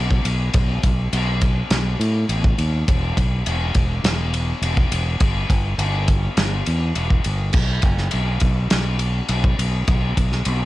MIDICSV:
0, 0, Header, 1, 3, 480
1, 0, Start_track
1, 0, Tempo, 583658
1, 443, Time_signature, 4, 2, 24, 8
1, 8759, End_track
2, 0, Start_track
2, 0, Title_t, "Fingered electric bass"
2, 0, Program_c, 0, 33
2, 0, Note_on_c, 0, 35, 91
2, 164, Note_off_c, 0, 35, 0
2, 206, Note_on_c, 0, 35, 82
2, 403, Note_off_c, 0, 35, 0
2, 446, Note_on_c, 0, 35, 85
2, 643, Note_off_c, 0, 35, 0
2, 686, Note_on_c, 0, 35, 94
2, 883, Note_off_c, 0, 35, 0
2, 928, Note_on_c, 0, 35, 110
2, 1323, Note_off_c, 0, 35, 0
2, 1402, Note_on_c, 0, 35, 92
2, 1601, Note_off_c, 0, 35, 0
2, 1642, Note_on_c, 0, 45, 87
2, 1841, Note_off_c, 0, 45, 0
2, 1882, Note_on_c, 0, 33, 98
2, 2081, Note_off_c, 0, 33, 0
2, 2125, Note_on_c, 0, 39, 82
2, 2322, Note_off_c, 0, 39, 0
2, 2371, Note_on_c, 0, 28, 92
2, 2566, Note_off_c, 0, 28, 0
2, 2610, Note_on_c, 0, 35, 88
2, 2806, Note_off_c, 0, 35, 0
2, 2853, Note_on_c, 0, 28, 111
2, 3047, Note_off_c, 0, 28, 0
2, 3086, Note_on_c, 0, 28, 90
2, 3283, Note_off_c, 0, 28, 0
2, 3321, Note_on_c, 0, 28, 90
2, 3718, Note_off_c, 0, 28, 0
2, 3797, Note_on_c, 0, 28, 96
2, 3998, Note_off_c, 0, 28, 0
2, 4044, Note_on_c, 0, 28, 87
2, 4242, Note_off_c, 0, 28, 0
2, 4283, Note_on_c, 0, 31, 99
2, 4481, Note_off_c, 0, 31, 0
2, 4519, Note_on_c, 0, 31, 85
2, 4719, Note_off_c, 0, 31, 0
2, 4755, Note_on_c, 0, 31, 102
2, 5154, Note_off_c, 0, 31, 0
2, 5239, Note_on_c, 0, 31, 83
2, 5439, Note_off_c, 0, 31, 0
2, 5489, Note_on_c, 0, 40, 94
2, 5684, Note_off_c, 0, 40, 0
2, 5722, Note_on_c, 0, 28, 90
2, 5921, Note_off_c, 0, 28, 0
2, 5969, Note_on_c, 0, 31, 88
2, 6165, Note_off_c, 0, 31, 0
2, 6202, Note_on_c, 0, 35, 89
2, 6401, Note_off_c, 0, 35, 0
2, 6438, Note_on_c, 0, 30, 101
2, 6638, Note_off_c, 0, 30, 0
2, 6691, Note_on_c, 0, 35, 95
2, 6886, Note_off_c, 0, 35, 0
2, 6921, Note_on_c, 0, 35, 92
2, 7120, Note_off_c, 0, 35, 0
2, 7171, Note_on_c, 0, 35, 90
2, 7564, Note_off_c, 0, 35, 0
2, 7641, Note_on_c, 0, 35, 100
2, 7840, Note_off_c, 0, 35, 0
2, 7885, Note_on_c, 0, 35, 92
2, 8082, Note_off_c, 0, 35, 0
2, 8125, Note_on_c, 0, 35, 97
2, 8323, Note_off_c, 0, 35, 0
2, 8369, Note_on_c, 0, 35, 90
2, 8565, Note_off_c, 0, 35, 0
2, 8604, Note_on_c, 0, 35, 96
2, 8759, Note_off_c, 0, 35, 0
2, 8759, End_track
3, 0, Start_track
3, 0, Title_t, "Drums"
3, 86, Note_on_c, 9, 36, 86
3, 169, Note_off_c, 9, 36, 0
3, 206, Note_on_c, 9, 51, 86
3, 288, Note_off_c, 9, 51, 0
3, 440, Note_on_c, 9, 51, 111
3, 446, Note_on_c, 9, 36, 114
3, 522, Note_off_c, 9, 51, 0
3, 528, Note_off_c, 9, 36, 0
3, 685, Note_on_c, 9, 51, 77
3, 686, Note_on_c, 9, 36, 78
3, 767, Note_off_c, 9, 51, 0
3, 769, Note_off_c, 9, 36, 0
3, 927, Note_on_c, 9, 51, 123
3, 1009, Note_off_c, 9, 51, 0
3, 1163, Note_on_c, 9, 51, 68
3, 1165, Note_on_c, 9, 36, 81
3, 1245, Note_off_c, 9, 51, 0
3, 1248, Note_off_c, 9, 36, 0
3, 1402, Note_on_c, 9, 51, 109
3, 1407, Note_on_c, 9, 38, 111
3, 1484, Note_off_c, 9, 51, 0
3, 1489, Note_off_c, 9, 38, 0
3, 1652, Note_on_c, 9, 51, 74
3, 1734, Note_off_c, 9, 51, 0
3, 1884, Note_on_c, 9, 51, 101
3, 1966, Note_off_c, 9, 51, 0
3, 2008, Note_on_c, 9, 36, 92
3, 2090, Note_off_c, 9, 36, 0
3, 2125, Note_on_c, 9, 51, 72
3, 2207, Note_off_c, 9, 51, 0
3, 2369, Note_on_c, 9, 36, 108
3, 2370, Note_on_c, 9, 51, 106
3, 2451, Note_off_c, 9, 36, 0
3, 2452, Note_off_c, 9, 51, 0
3, 2608, Note_on_c, 9, 36, 82
3, 2611, Note_on_c, 9, 51, 77
3, 2690, Note_off_c, 9, 36, 0
3, 2693, Note_off_c, 9, 51, 0
3, 2848, Note_on_c, 9, 51, 115
3, 2930, Note_off_c, 9, 51, 0
3, 3081, Note_on_c, 9, 51, 77
3, 3085, Note_on_c, 9, 36, 87
3, 3163, Note_off_c, 9, 51, 0
3, 3168, Note_off_c, 9, 36, 0
3, 3325, Note_on_c, 9, 51, 116
3, 3330, Note_on_c, 9, 38, 120
3, 3408, Note_off_c, 9, 51, 0
3, 3413, Note_off_c, 9, 38, 0
3, 3566, Note_on_c, 9, 51, 80
3, 3649, Note_off_c, 9, 51, 0
3, 3804, Note_on_c, 9, 51, 116
3, 3887, Note_off_c, 9, 51, 0
3, 3924, Note_on_c, 9, 36, 98
3, 4006, Note_off_c, 9, 36, 0
3, 4045, Note_on_c, 9, 51, 93
3, 4128, Note_off_c, 9, 51, 0
3, 4280, Note_on_c, 9, 51, 117
3, 4283, Note_on_c, 9, 36, 110
3, 4362, Note_off_c, 9, 51, 0
3, 4365, Note_off_c, 9, 36, 0
3, 4522, Note_on_c, 9, 36, 84
3, 4524, Note_on_c, 9, 51, 77
3, 4605, Note_off_c, 9, 36, 0
3, 4606, Note_off_c, 9, 51, 0
3, 4761, Note_on_c, 9, 51, 115
3, 4843, Note_off_c, 9, 51, 0
3, 4999, Note_on_c, 9, 51, 75
3, 5001, Note_on_c, 9, 36, 82
3, 5081, Note_off_c, 9, 51, 0
3, 5084, Note_off_c, 9, 36, 0
3, 5239, Note_on_c, 9, 51, 122
3, 5244, Note_on_c, 9, 38, 115
3, 5321, Note_off_c, 9, 51, 0
3, 5326, Note_off_c, 9, 38, 0
3, 5480, Note_on_c, 9, 51, 78
3, 5562, Note_off_c, 9, 51, 0
3, 5719, Note_on_c, 9, 51, 99
3, 5801, Note_off_c, 9, 51, 0
3, 5843, Note_on_c, 9, 36, 87
3, 5925, Note_off_c, 9, 36, 0
3, 5957, Note_on_c, 9, 51, 81
3, 6039, Note_off_c, 9, 51, 0
3, 6190, Note_on_c, 9, 49, 109
3, 6200, Note_on_c, 9, 36, 115
3, 6272, Note_off_c, 9, 49, 0
3, 6282, Note_off_c, 9, 36, 0
3, 6430, Note_on_c, 9, 51, 67
3, 6439, Note_on_c, 9, 36, 89
3, 6512, Note_off_c, 9, 51, 0
3, 6521, Note_off_c, 9, 36, 0
3, 6561, Note_on_c, 9, 38, 32
3, 6644, Note_off_c, 9, 38, 0
3, 6669, Note_on_c, 9, 51, 109
3, 6751, Note_off_c, 9, 51, 0
3, 6909, Note_on_c, 9, 51, 71
3, 6920, Note_on_c, 9, 36, 82
3, 6991, Note_off_c, 9, 51, 0
3, 7002, Note_off_c, 9, 36, 0
3, 7158, Note_on_c, 9, 51, 115
3, 7163, Note_on_c, 9, 38, 126
3, 7241, Note_off_c, 9, 51, 0
3, 7246, Note_off_c, 9, 38, 0
3, 7395, Note_on_c, 9, 51, 75
3, 7477, Note_off_c, 9, 51, 0
3, 7637, Note_on_c, 9, 51, 114
3, 7719, Note_off_c, 9, 51, 0
3, 7763, Note_on_c, 9, 36, 97
3, 7845, Note_off_c, 9, 36, 0
3, 7887, Note_on_c, 9, 51, 92
3, 7969, Note_off_c, 9, 51, 0
3, 8121, Note_on_c, 9, 51, 105
3, 8123, Note_on_c, 9, 36, 105
3, 8204, Note_off_c, 9, 51, 0
3, 8205, Note_off_c, 9, 36, 0
3, 8365, Note_on_c, 9, 36, 82
3, 8366, Note_on_c, 9, 51, 81
3, 8447, Note_off_c, 9, 36, 0
3, 8448, Note_off_c, 9, 51, 0
3, 8487, Note_on_c, 9, 38, 36
3, 8569, Note_off_c, 9, 38, 0
3, 8595, Note_on_c, 9, 51, 121
3, 8677, Note_off_c, 9, 51, 0
3, 8759, End_track
0, 0, End_of_file